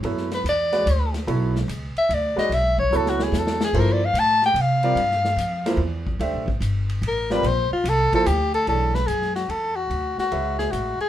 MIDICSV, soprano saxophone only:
0, 0, Header, 1, 2, 480
1, 0, Start_track
1, 0, Tempo, 410959
1, 49, Time_signature, 3, 2, 24, 8
1, 12952, End_track
2, 0, Start_track
2, 0, Title_t, "Soprano saxophone"
2, 0, Program_c, 0, 64
2, 397, Note_on_c, 0, 71, 80
2, 533, Note_off_c, 0, 71, 0
2, 570, Note_on_c, 0, 74, 94
2, 1303, Note_off_c, 0, 74, 0
2, 2311, Note_on_c, 0, 76, 95
2, 2501, Note_on_c, 0, 74, 85
2, 2518, Note_off_c, 0, 76, 0
2, 2782, Note_off_c, 0, 74, 0
2, 2789, Note_on_c, 0, 75, 99
2, 2967, Note_on_c, 0, 76, 97
2, 2985, Note_off_c, 0, 75, 0
2, 3256, Note_off_c, 0, 76, 0
2, 3263, Note_on_c, 0, 73, 89
2, 3461, Note_on_c, 0, 69, 80
2, 3478, Note_off_c, 0, 73, 0
2, 3616, Note_on_c, 0, 66, 82
2, 3634, Note_off_c, 0, 69, 0
2, 3778, Note_on_c, 0, 68, 72
2, 3796, Note_off_c, 0, 66, 0
2, 3954, Note_on_c, 0, 69, 80
2, 3971, Note_off_c, 0, 68, 0
2, 4242, Note_off_c, 0, 69, 0
2, 4254, Note_on_c, 0, 68, 88
2, 4425, Note_on_c, 0, 70, 80
2, 4442, Note_off_c, 0, 68, 0
2, 4586, Note_on_c, 0, 74, 84
2, 4603, Note_off_c, 0, 70, 0
2, 4730, Note_on_c, 0, 77, 102
2, 4747, Note_off_c, 0, 74, 0
2, 4895, Note_on_c, 0, 81, 118
2, 4913, Note_off_c, 0, 77, 0
2, 5193, Note_off_c, 0, 81, 0
2, 5203, Note_on_c, 0, 79, 89
2, 5382, Note_on_c, 0, 77, 85
2, 5400, Note_off_c, 0, 79, 0
2, 6796, Note_off_c, 0, 77, 0
2, 8265, Note_on_c, 0, 70, 87
2, 8548, Note_on_c, 0, 71, 102
2, 8566, Note_off_c, 0, 70, 0
2, 8726, Note_on_c, 0, 72, 97
2, 8744, Note_off_c, 0, 71, 0
2, 9021, Note_off_c, 0, 72, 0
2, 9028, Note_on_c, 0, 65, 83
2, 9213, Note_on_c, 0, 69, 100
2, 9230, Note_off_c, 0, 65, 0
2, 9511, Note_off_c, 0, 69, 0
2, 9520, Note_on_c, 0, 69, 91
2, 9657, Note_on_c, 0, 67, 90
2, 9675, Note_off_c, 0, 69, 0
2, 9973, Note_off_c, 0, 67, 0
2, 9978, Note_on_c, 0, 69, 93
2, 10123, Note_off_c, 0, 69, 0
2, 10150, Note_on_c, 0, 69, 84
2, 10450, Note_on_c, 0, 71, 87
2, 10468, Note_off_c, 0, 69, 0
2, 10591, Note_on_c, 0, 68, 80
2, 10608, Note_off_c, 0, 71, 0
2, 10918, Note_off_c, 0, 68, 0
2, 10925, Note_on_c, 0, 66, 69
2, 11097, Note_on_c, 0, 69, 78
2, 11115, Note_off_c, 0, 66, 0
2, 11400, Note_on_c, 0, 66, 92
2, 11417, Note_off_c, 0, 69, 0
2, 11886, Note_off_c, 0, 66, 0
2, 11907, Note_on_c, 0, 66, 87
2, 12347, Note_off_c, 0, 66, 0
2, 12365, Note_on_c, 0, 68, 79
2, 12515, Note_on_c, 0, 66, 71
2, 12533, Note_off_c, 0, 68, 0
2, 12845, Note_off_c, 0, 66, 0
2, 12860, Note_on_c, 0, 68, 90
2, 12952, Note_off_c, 0, 68, 0
2, 12952, End_track
0, 0, End_of_file